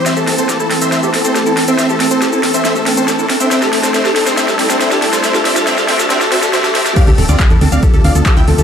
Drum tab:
CC |----------------|----------------|----------------|----------------|
RD |----------------|----------------|----------------|----------------|
HH |x-oxx-oxx-oxx-ox|x-oxx-oxx-oxx-ox|x-oxx-oxx-oxx-ox|x-oxx-oxx-oxx-ox|
SH |xx-xxx-xxx-xxx-x|xx-xxx-xxx-xxx-x|xx-xxx-xxx-xxx-x|xx-xxx-xxx-xxx-x|
CP |----------------|----------------|----------------|----------------|
SD |o-o-o-o-o-o-o-o-|o-o-o-o-o-o-o-o-|oooooooooooooooo|oooooooooooooooo|
BD |----------------|----------------|----------------|----------------|

CC |x---------------|
RD |x---x---x---x---|
HH |xxoxxxoxxxoxxxox|
SH |xx-xxx-xxx-xxx-x|
CP |----x-------x---|
SD |----------------|
BD |o---o---o---o---|